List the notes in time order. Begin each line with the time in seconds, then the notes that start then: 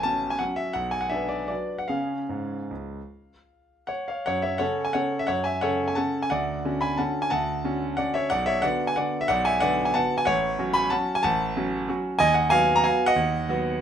Already playing: A1 G#5
0.03 C#4 F#4 A5
0.30 G#5
0.39 F#3 C#4 F#4 F#5
0.56 E5
0.73 B1 F#5
0.91 G#5
1.01 F#5
1.10 D4 B4 E5
1.29 D5
1.48 F#3 D4 B4 D5
1.78 F#5
1.88 C#3 C#4 G#4 F5
2.29 G#2
2.71 C#2
3.87 C#5 F#5
4.08 C#5 F5
4.26 F#2 C#5 F#5
4.42 C#5 E5
4.58 C#3 C#4 A4 C#5 F#5
4.85 G#5
4.93 C#3 C#4 A4 C#5 F#5
5.19 E5
5.27 F#2 C#5 F#5
5.44 E5 G#5
5.61 C#3 C#4 A4 C#5 F#5
5.88 G#5
5.95 C#3 C#4 A4 F#5 A5
6.22 G#5
6.30 D2 D5 F#5
6.65 D3 C#4 F#4
6.81 G#5 B5
6.97 D3 C#4 F#4 F#5 A5
7.22 G#5
7.30 D2 F#5 A5
7.64 D3 C#4 F#4
7.97 D3 C#4 F#4 D5 F#5
8.14 C#5 E5
8.30 B1 D5 F#5
8.46 C#5 E5
8.62 D3 B3 F#4 D5 F#5
8.87 G#5
8.96 D3 B3 F#4 D5 F#5
9.21 E5
9.28 B1 D5 F#5
9.45 E5 G#5
9.60 D3 B3 F#4 D5 F#5
9.85 G#5
9.94 D3 B3 F#4 F#5 A5
10.18 G#5
10.25 A1 C#5 F#5
10.59 F#3 C#4 F#4
10.73 G#5 B5
10.90 F#3 C#4 F#4 F#5 A5
11.15 G#5
11.23 A1 F#5 A5
11.57 F#3 C#4 F#4
11.88 F#3 C#4 F#4
12.19 D#2 D#5 G#5
12.34 D#5 F#5
12.50 F#3 B3 F#4 F5 G#5
12.76 A#5
12.84 F#3 B3 F#4 F5 G#5
13.06 D#5 F#5
13.16 D#2
13.49 F#3 B3 F#4